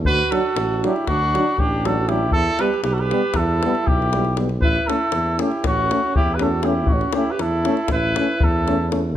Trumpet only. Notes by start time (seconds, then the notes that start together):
0.07 B4
0.32 A4
0.85 G4
1.07 F#4
1.60 G4
1.86 A4
2.09 G4
2.33 A4
2.61 B4
2.84 B4
2.93 A4
3.00 B4
3.36 A4
3.87 G4
4.62 B4
4.87 A4
5.41 G4
5.66 F#4
6.15 G4
6.34 B4
6.42 A4
6.65 G4
6.88 F#4
7.14 G4
7.30 B4
7.41 A4
7.92 B4
8.44 A4